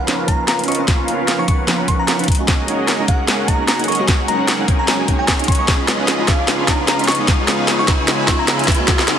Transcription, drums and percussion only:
0.08 snare soft
0.08 closed hi-hat medium
0.28 kick medium
0.28 closed hi-hat medium
0.48 snare medium
0.48 closed hi-hat medium
0.59 closed hi-hat soft
0.64 closed hi-hat medium
0.68 closed hi-hat soft
0.72 closed hi-hat medium
0.75 closed hi-hat medium
0.88 kick loud
0.88 snare medium
0.88 closed hi-hat medium
1.08 closed hi-hat medium
1.28 snare medium
1.28 closed hi-hat medium
1.48 kick loud
1.48 closed hi-hat medium
1.68 snare medium
1.68 closed hi-hat medium
1.88 kick medium
1.88 closed hi-hat medium
2.08 snare medium
2.08 closed hi-hat medium
2.19 closed hi-hat medium
2.24 closed hi-hat medium
2.28 kick loud
2.28 closed hi-hat soft
2.32 closed hi-hat medium
2.35 closed hi-hat medium
2.48 kick loud
2.48 snare medium
2.48 closed hi-hat medium
2.68 closed hi-hat medium
2.88 snare medium
2.88 closed hi-hat medium
3.08 kick loud
3.08 closed hi-hat medium
3.28 snare medium
3.28 closed hi-hat medium
3.48 kick medium
3.48 closed hi-hat medium
3.68 snare medium
3.68 closed hi-hat medium
3.79 closed hi-hat soft
3.84 closed hi-hat medium
3.88 closed hi-hat soft
3.92 closed hi-hat medium
3.95 closed hi-hat medium
4.08 kick loud
4.08 snare medium
4.08 closed hi-hat medium
4.28 closed hi-hat medium
4.48 snare medium
4.48 closed hi-hat medium
4.68 kick loud
4.68 closed hi-hat medium
4.88 snare medium
4.88 closed hi-hat medium
5.08 kick medium
5.08 closed hi-hat medium
5.28 kick medium
5.28 snare medium
5.28 closed hi-hat medium
5.39 closed hi-hat soft
5.44 closed hi-hat medium
5.48 kick loud
5.48 closed hi-hat soft
5.52 closed hi-hat medium
5.55 closed hi-hat medium
5.68 kick loud
5.68 snare medium
5.68 closed hi-hat medium
5.88 snare medium
5.88 closed hi-hat medium
6.08 snare medium
6.08 closed hi-hat medium
6.28 kick loud
6.28 snare medium
6.28 closed hi-hat medium
6.48 snare medium
6.48 closed hi-hat medium
6.68 kick medium
6.68 snare medium
6.68 closed hi-hat medium
6.88 snare medium
6.88 closed hi-hat medium
6.99 closed hi-hat medium
7.04 closed hi-hat medium
7.08 snare medium
7.08 closed hi-hat medium
7.08 open hi-hat medium
7.15 closed hi-hat medium
7.28 kick loud
7.28 snare medium
7.28 closed hi-hat medium
7.48 snare medium
7.48 closed hi-hat medium
7.68 snare medium
7.68 closed hi-hat medium
7.88 kick loud
7.88 snare medium
7.88 closed hi-hat medium
8.08 snare medium
8.08 closed hi-hat medium
8.28 kick medium
8.28 snare medium
8.28 closed hi-hat medium
8.48 snare medium
8.48 closed hi-hat medium
8.59 closed hi-hat soft
8.64 closed hi-hat medium
8.68 kick loud
8.68 snare medium
8.68 closed hi-hat medium
8.68 open hi-hat medium
8.75 closed hi-hat medium
8.88 kick loud
8.88 snare medium
8.88 closed hi-hat medium
8.99 snare medium
9.08 snare medium
9.08 closed hi-hat medium

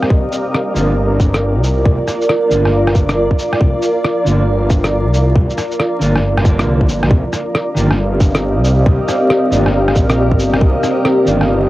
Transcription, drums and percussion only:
0.03 cross-stick medium
0.10 kick loud
0.32 shaker medium
0.54 cross-stick loud
0.76 shaker medium
1.20 kick medium
1.20 shaker medium
1.34 cross-stick loud
1.34 shaker soft
1.64 shaker medium
1.86 kick loud
2.08 cross-stick soft
2.08 shaker medium
2.22 shaker soft
2.29 cross-stick loud
2.51 shaker soft
2.65 cross-stick medium
2.87 cross-stick medium
2.95 kick loud
2.95 shaker soft
3.09 cross-stick loud
3.09 shaker soft
3.31 kick medium
3.39 shaker medium
3.53 cross-stick medium
3.61 kick loud
3.82 shaker medium
4.04 cross-stick loud
4.26 shaker medium
4.70 kick medium
4.70 shaker medium
4.84 cross-stick loud
4.84 shaker soft
5.14 shaker medium
5.36 kick loud
5.50 shaker soft
5.58 cross-stick soft
5.58 shaker medium
5.72 shaker soft
5.80 cross-stick loud
6.02 shaker medium
6.16 cross-stick medium
6.37 cross-stick medium
6.45 kick medium
6.45 shaker medium
6.59 cross-stick loud
6.59 shaker soft
6.81 kick medium
6.89 shaker medium
7.03 cross-stick medium
7.11 kick loud
7.33 cross-stick soft
7.33 shaker medium
7.55 cross-stick loud
7.77 shaker medium
7.91 cross-stick medium
8.20 kick loud
8.20 shaker medium
8.35 cross-stick loud
8.35 shaker soft
8.65 shaker medium
8.86 kick loud
9.09 cross-stick soft
9.09 shaker medium
9.30 cross-stick loud
9.52 shaker medium
9.66 cross-stick medium
9.88 cross-stick medium
9.96 kick loud
9.96 shaker medium
10.10 cross-stick loud
10.10 shaker soft
10.32 kick medium
10.40 shaker medium
10.54 cross-stick medium
10.61 kick loud
10.83 cross-stick soft
10.83 shaker medium
11.05 cross-stick loud
11.27 shaker medium
11.41 cross-stick medium

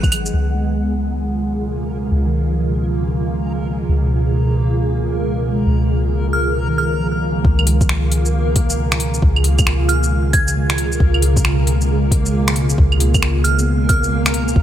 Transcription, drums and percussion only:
0.03 kick loud
0.03 claves soft
0.03 shaker soft
0.12 open hi-hat medium
0.12 claves medium
0.26 shaker medium
7.45 kick loud
7.59 claves medium
7.67 open hi-hat medium
7.81 kick loud
7.81 shaker medium
7.89 finger snap loud
8.12 open hi-hat medium
8.25 shaker medium
8.56 kick loud
8.56 open hi-hat medium
8.70 shaker medium
8.92 finger snap loud
8.92 shaker soft
9.00 open hi-hat medium
9.14 shaker medium
9.22 kick loud
9.36 claves medium
9.44 open hi-hat medium
9.59 kick loud
9.59 claves medium
9.59 shaker medium
9.67 finger snap loud
9.89 open hi-hat medium
10.03 shaker medium
10.33 kick loud
10.33 open hi-hat medium
10.48 shaker medium
10.70 finger snap loud
10.70 shaker soft
10.78 open hi-hat medium
10.92 shaker medium
11.00 kick loud
11.14 claves soft
11.22 open hi-hat medium
11.37 kick loud
11.37 shaker medium
11.45 finger snap loud
11.67 open hi-hat medium
11.81 shaker medium
12.11 kick loud
12.11 open hi-hat medium
12.26 shaker medium
12.48 finger snap loud
12.48 shaker soft
12.56 open hi-hat medium
12.70 shaker medium
12.78 kick loud
12.92 claves soft
13.00 open hi-hat medium
13.14 kick loud
13.14 claves medium
13.14 shaker medium
13.23 finger snap loud
13.45 open hi-hat medium
13.45 shaker soft
13.59 shaker medium
13.89 kick loud
13.89 open hi-hat medium
14.04 shaker medium
14.26 finger snap loud
14.26 shaker soft
14.34 open hi-hat medium
14.48 shaker medium
14.56 kick loud

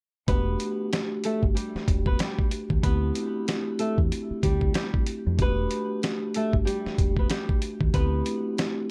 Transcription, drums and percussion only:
0.28 kick loud
0.28 closed hi-hat medium
0.60 closed hi-hat medium
0.93 snare loud
0.93 closed hi-hat medium
1.24 closed hi-hat medium
1.43 kick medium
1.57 closed hi-hat medium
1.76 snare soft
1.88 kick medium
1.88 closed hi-hat medium
2.06 kick medium
2.19 snare loud
2.19 closed hi-hat medium
2.39 kick medium
2.51 closed hi-hat medium
2.70 kick medium
2.83 kick loud
2.83 closed hi-hat medium
3.15 closed hi-hat medium
3.48 snare loud
3.48 closed hi-hat medium
3.79 closed hi-hat medium
3.98 kick medium
4.12 closed hi-hat medium
4.43 kick medium
4.43 closed hi-hat medium
4.61 kick medium
4.74 snare loud
4.74 closed hi-hat medium
4.94 kick medium
5.07 closed hi-hat medium
5.39 kick loud
5.39 closed hi-hat medium
5.71 closed hi-hat medium
6.03 snare loud
6.03 closed hi-hat medium
6.34 closed hi-hat medium
6.53 kick medium
6.67 closed hi-hat medium
6.86 snare soft
6.98 kick medium
6.98 closed hi-hat medium
7.17 kick medium
7.30 snare loud
7.30 closed hi-hat medium
7.49 kick loud
7.62 closed hi-hat medium
7.81 kick loud
7.94 kick loud
7.94 closed hi-hat medium
8.26 closed hi-hat medium
8.58 snare loud
8.58 closed hi-hat medium

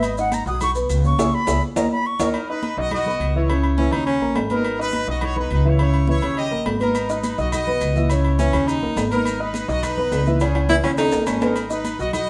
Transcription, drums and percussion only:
0.02 high conga soft
0.02 low agogo loud
0.02 maracas medium
0.17 high conga soft
0.17 maracas medium
0.32 high conga loud
0.32 low agogo medium
0.32 maracas medium
0.47 maracas soft
0.61 high conga soft
0.61 low conga medium
0.61 low agogo loud
0.61 maracas medium
0.75 maracas medium
0.90 high conga soft
0.90 low agogo medium
0.90 maracas medium
1.04 high conga medium
1.04 maracas soft
1.19 high conga loud
1.19 high timbale loud
1.19 maracas loud
1.47 high conga loud
1.47 high timbale medium
1.47 maracas loud
1.76 high conga loud
1.76 high timbale loud
1.76 maracas loud
2.20 high conga loud
2.20 high timbale loud
2.20 maracas loud
2.34 high conga soft
2.34 low agogo loud
2.49 high conga soft
2.63 high conga loud
2.63 low agogo medium
2.77 high conga soft
2.91 high conga soft
2.91 low conga loud
2.91 low agogo loud
3.06 high conga soft
3.06 low conga medium
3.20 high conga soft
3.20 low agogo medium
3.49 high conga soft
3.49 low agogo loud
3.63 high conga soft
3.63 low agogo medium
3.78 high conga loud
3.93 low agogo loud
4.07 high conga soft
4.07 low agogo medium
4.21 high conga soft
4.35 high conga medium
4.35 low timbale medium
4.35 low agogo loud
4.50 high conga medium
4.50 low agogo medium
4.65 low agogo loud
4.79 high conga soft
4.93 high conga loud
4.93 low agogo medium
5.21 high conga soft
5.21 low conga medium
5.21 low agogo loud
5.36 high conga soft
5.36 low conga medium
5.51 high conga soft
5.51 low agogo medium
5.79 high conga soft
5.79 low agogo loud
5.94 high conga soft
5.94 low agogo loud
6.07 high conga loud
6.22 low agogo loud
6.37 high conga soft
6.37 low agogo medium
6.51 high conga soft
6.66 high conga medium
6.66 low timbale medium
6.66 low agogo loud
6.80 high conga medium
6.80 low agogo medium
6.95 high conga soft
6.95 low agogo loud
6.95 maracas medium
7.09 high conga soft
7.09 maracas medium
7.23 high conga loud
7.23 low agogo medium
7.23 maracas medium
7.38 maracas soft
7.52 high conga soft
7.52 low conga medium
7.52 low agogo loud
7.52 maracas medium
7.67 high conga soft
7.67 low conga medium
7.81 high conga soft
7.81 low agogo medium
7.81 maracas medium
7.96 high conga medium
7.96 maracas soft
8.10 low agogo loud
8.10 maracas medium
8.25 high conga soft
8.25 low agogo medium
8.39 high conga loud
8.39 maracas medium
8.53 low agogo loud
8.53 maracas soft
8.68 high conga soft
8.68 low agogo medium
8.68 maracas medium
8.82 high conga soft
8.96 high conga medium
8.96 low timbale medium
8.96 low agogo loud
8.96 maracas medium
9.11 high conga medium
9.11 low agogo medium
9.11 maracas soft
9.25 high conga soft
9.25 low agogo loud
9.25 maracas medium
9.40 high conga soft
9.54 high conga loud
9.54 low agogo medium
9.54 maracas medium
9.69 maracas soft
9.83 high conga soft
9.83 low conga medium
9.83 low agogo loud
9.83 maracas medium
9.98 high conga soft
9.98 low conga medium
10.11 high conga soft
10.11 low timbale medium
10.11 low agogo medium
10.11 maracas medium
10.26 high conga medium
10.26 maracas soft
10.40 high timbale medium
10.40 low agogo loud
10.40 maracas medium
10.54 high conga soft
10.54 high timbale medium
10.54 low agogo loud
10.69 high conga loud
10.69 high timbale medium
10.69 maracas medium
10.83 high timbale medium
10.83 low agogo loud
10.83 maracas soft
10.98 low timbale loud
10.98 low agogo medium
10.98 maracas medium
11.12 high conga soft
11.12 low timbale loud
11.12 maracas medium
11.26 high conga medium
11.26 low timbale medium
11.26 low agogo loud
11.26 maracas medium
11.41 high conga medium
11.41 low timbale medium
11.41 low agogo medium
11.41 maracas soft
11.56 low agogo loud
11.56 maracas medium
11.70 high conga soft
11.70 maracas medium
11.85 high conga medium
11.85 low agogo medium
11.85 maracas medium
11.99 high conga soft
11.99 maracas soft
12.13 high conga soft
12.13 low conga medium
12.13 low agogo loud
12.13 maracas medium

